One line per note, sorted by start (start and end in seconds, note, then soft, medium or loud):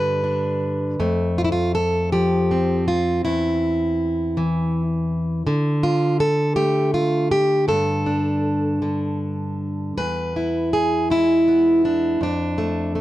0.00 0.95 G2 medium
0.00 0.99 D3 medium
0.00 0.22 D4 soft
0.00 0.99 B4 medium
0.24 0.95 D4 soft
1.00 3.21 F2 medium
1.00 3.21 A3 medium
1.38 1.44 F4 medium
1.44 1.51 E4 medium
1.52 1.74 F4 medium
1.75 2.12 A4 medium
2.12 3.21 F3 medium
2.12 2.87 G4 medium
2.51 5.50 C4 medium
2.88 3.24 F4 medium
3.25 5.46 E2 medium
3.25 4.81 E4 medium
4.37 5.42 E3 medium
5.47 8.81 D3 medium
5.83 6.20 F4 medium
6.20 6.56 A4 loud
6.56 7.64 A3 medium
6.56 6.93 G4 loud
6.94 7.31 F4 medium
7.31 7.68 G4 loud
7.68 9.92 G2 medium
7.68 9.97 A4 medium
8.06 9.93 D4 soft
8.82 9.97 D3 medium
9.97 12.20 E2 medium
9.97 10.73 B4 medium
10.36 11.11 E4 soft
10.73 11.11 G#4 medium
11.10 12.17 G#3 medium
11.10 12.22 E4 medium
11.48 12.17 B3 soft
11.85 12.22 D4 medium
12.21 13.01 F2 medium
12.21 13.01 D4 medium
12.58 12.95 A3 soft
12.95 13.01 A3 soft